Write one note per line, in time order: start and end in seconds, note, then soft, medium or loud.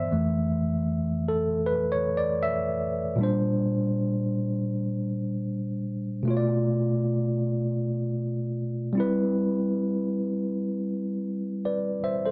0.00 0.12 G2 soft
0.00 0.12 E3 soft
0.00 0.13 B3 medium
0.00 0.12 C5 medium
0.00 0.12 D5 loud
0.00 0.13 D#5 medium
0.00 0.84 E5 medium
0.11 0.64 F2 medium
0.11 0.65 E3 medium
0.11 0.65 A3 medium
1.28 1.67 A4 medium
1.66 1.92 B4 medium
1.92 2.17 C#5 medium
2.17 2.43 D5 medium
2.43 2.60 E5 loud
3.16 6.21 A#2 medium
3.16 6.22 G3 medium
3.21 6.23 D4 medium
3.21 6.24 C5 medium
6.23 8.90 B2 medium
6.23 8.91 A3 medium
6.28 8.92 F4 medium
6.28 6.36 C#5 medium
6.37 8.96 D5 medium
8.93 11.98 G3 medium
8.93 11.99 C4 medium
8.98 12.00 E4 medium
8.98 11.63 B4 medium
11.65 12.02 B4 medium
11.65 12.01 D5 medium
12.04 12.24 C5 medium
12.04 12.24 E5 medium
12.26 12.31 A4 soft
12.26 12.31 C5 medium